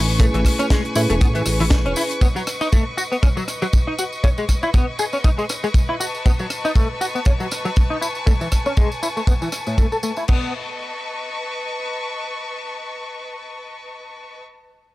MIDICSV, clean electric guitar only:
0, 0, Header, 1, 2, 480
1, 0, Start_track
1, 0, Tempo, 504202
1, 191, Time_signature, 4, 2, 24, 8
1, 14231, End_track
2, 0, Start_track
2, 0, Title_t, "Clean electric guitar"
2, 0, Program_c, 0, 27
2, 191, Note_on_c, 0, 57, 76
2, 231, Note_off_c, 0, 57, 0
2, 326, Note_on_c, 0, 52, 69
2, 379, Note_off_c, 0, 52, 0
2, 564, Note_on_c, 0, 61, 91
2, 618, Note_off_c, 0, 61, 0
2, 672, Note_on_c, 0, 56, 73
2, 772, Note_off_c, 0, 56, 0
2, 911, Note_on_c, 0, 64, 69
2, 952, Note_off_c, 0, 64, 0
2, 1044, Note_on_c, 0, 57, 72
2, 1077, Note_off_c, 0, 57, 0
2, 1152, Note_on_c, 0, 59, 74
2, 1192, Note_off_c, 0, 59, 0
2, 1285, Note_on_c, 0, 52, 71
2, 1338, Note_off_c, 0, 52, 0
2, 1528, Note_on_c, 0, 52, 92
2, 1558, Note_off_c, 0, 52, 0
2, 1767, Note_on_c, 0, 61, 71
2, 1819, Note_off_c, 0, 61, 0
2, 1873, Note_on_c, 0, 64, 72
2, 1912, Note_off_c, 0, 64, 0
2, 2111, Note_on_c, 0, 59, 72
2, 2152, Note_off_c, 0, 59, 0
2, 2245, Note_on_c, 0, 54, 68
2, 2298, Note_off_c, 0, 54, 0
2, 2485, Note_on_c, 0, 63, 90
2, 2538, Note_off_c, 0, 63, 0
2, 2593, Note_on_c, 0, 57, 72
2, 2693, Note_off_c, 0, 57, 0
2, 2832, Note_on_c, 0, 66, 70
2, 2872, Note_off_c, 0, 66, 0
2, 2967, Note_on_c, 0, 59, 70
2, 2998, Note_off_c, 0, 59, 0
2, 3072, Note_on_c, 0, 61, 73
2, 3112, Note_off_c, 0, 61, 0
2, 3206, Note_on_c, 0, 54, 71
2, 3259, Note_off_c, 0, 54, 0
2, 3448, Note_on_c, 0, 54, 95
2, 3478, Note_off_c, 0, 54, 0
2, 3688, Note_on_c, 0, 63, 72
2, 3740, Note_off_c, 0, 63, 0
2, 3797, Note_on_c, 0, 66, 71
2, 3834, Note_off_c, 0, 66, 0
2, 4033, Note_on_c, 0, 61, 74
2, 4072, Note_off_c, 0, 61, 0
2, 4171, Note_on_c, 0, 56, 68
2, 4221, Note_off_c, 0, 56, 0
2, 4408, Note_on_c, 0, 64, 90
2, 4459, Note_off_c, 0, 64, 0
2, 4513, Note_on_c, 0, 59, 76
2, 4613, Note_off_c, 0, 59, 0
2, 4753, Note_on_c, 0, 68, 69
2, 4792, Note_off_c, 0, 68, 0
2, 4885, Note_on_c, 0, 61, 70
2, 4917, Note_off_c, 0, 61, 0
2, 4991, Note_on_c, 0, 63, 73
2, 5031, Note_off_c, 0, 63, 0
2, 5124, Note_on_c, 0, 56, 73
2, 5177, Note_off_c, 0, 56, 0
2, 5367, Note_on_c, 0, 56, 93
2, 5398, Note_off_c, 0, 56, 0
2, 5607, Note_on_c, 0, 64, 71
2, 5659, Note_off_c, 0, 64, 0
2, 5714, Note_on_c, 0, 66, 72
2, 5753, Note_off_c, 0, 66, 0
2, 5958, Note_on_c, 0, 59, 77
2, 5995, Note_off_c, 0, 59, 0
2, 6091, Note_on_c, 0, 54, 69
2, 6141, Note_off_c, 0, 54, 0
2, 6329, Note_on_c, 0, 63, 89
2, 6380, Note_off_c, 0, 63, 0
2, 6435, Note_on_c, 0, 57, 74
2, 6534, Note_off_c, 0, 57, 0
2, 6673, Note_on_c, 0, 66, 70
2, 6712, Note_off_c, 0, 66, 0
2, 6807, Note_on_c, 0, 59, 70
2, 6838, Note_off_c, 0, 59, 0
2, 6914, Note_on_c, 0, 61, 72
2, 6953, Note_off_c, 0, 61, 0
2, 7047, Note_on_c, 0, 54, 69
2, 7099, Note_off_c, 0, 54, 0
2, 7284, Note_on_c, 0, 54, 93
2, 7317, Note_off_c, 0, 54, 0
2, 7523, Note_on_c, 0, 63, 69
2, 7577, Note_off_c, 0, 63, 0
2, 7630, Note_on_c, 0, 64, 70
2, 7671, Note_off_c, 0, 64, 0
2, 7867, Note_on_c, 0, 57, 71
2, 7910, Note_off_c, 0, 57, 0
2, 8006, Note_on_c, 0, 52, 68
2, 8059, Note_off_c, 0, 52, 0
2, 8245, Note_on_c, 0, 61, 89
2, 8298, Note_off_c, 0, 61, 0
2, 8350, Note_on_c, 0, 56, 73
2, 8451, Note_off_c, 0, 56, 0
2, 8593, Note_on_c, 0, 64, 69
2, 8632, Note_off_c, 0, 64, 0
2, 8727, Note_on_c, 0, 57, 67
2, 8758, Note_off_c, 0, 57, 0
2, 8835, Note_on_c, 0, 59, 73
2, 8873, Note_off_c, 0, 59, 0
2, 8967, Note_on_c, 0, 52, 68
2, 9019, Note_off_c, 0, 52, 0
2, 9205, Note_on_c, 0, 45, 68
2, 9285, Note_off_c, 0, 45, 0
2, 9310, Note_on_c, 0, 57, 69
2, 9378, Note_off_c, 0, 57, 0
2, 9445, Note_on_c, 0, 69, 68
2, 9477, Note_off_c, 0, 69, 0
2, 9550, Note_on_c, 0, 57, 89
2, 9618, Note_off_c, 0, 57, 0
2, 9684, Note_on_c, 0, 64, 66
2, 9737, Note_off_c, 0, 64, 0
2, 9791, Note_on_c, 0, 59, 82
2, 10014, Note_off_c, 0, 59, 0
2, 14231, End_track
0, 0, End_of_file